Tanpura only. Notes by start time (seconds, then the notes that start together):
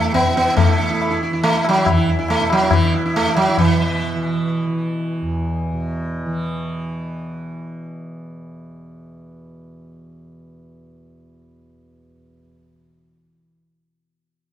Already playing: E2 B2 E3
0.22 B2
0.78 E3
1.31 E3
1.85 E2
2.39 B2
2.93 E3
3.49 E3
3.60 B2
4.15 E3
4.67 E3
5.21 E2
5.73 B2
6.26 E3